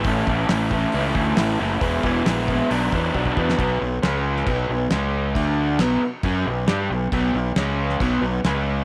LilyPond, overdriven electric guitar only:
\new Staff \with { instrumentName = "Overdriven electric guitar" } { \clef bass \time 4/4 \key b \dorian \tempo 4 = 136 <a, e a cis' e'>8 <a, e a cis' e'>8 <a, e a cis' e'>8 <a, e a cis' e'>8 <a, e a cis' e'>8 <a, e a cis' e'>8 <a, e a cis' e'>8 <a, e a cis' e'>8 | <e gis b e'>8 <e gis b e'>8 <e gis b e'>8 <e gis b e'>8 <b, fis b d'>8 <b, fis b d'>8 <b, fis b d'>8 <b, fis b d'>8 | <b, fis b>8 <b, fis>8 <cis gis cis'>4 <b, fis b>8 <b, fis>8 <cis gis cis'>4 | <d a d'>4 <b, fis b>8 r8 <fis cis' fis'>8 <b, fis>8 <g d' g'>8 <b, fis>8 |
<b, fis b>8 <b, fis>8 <cis gis cis'>4 <b, fis b>8 <b, fis>8 <cis gis cis'>4 | }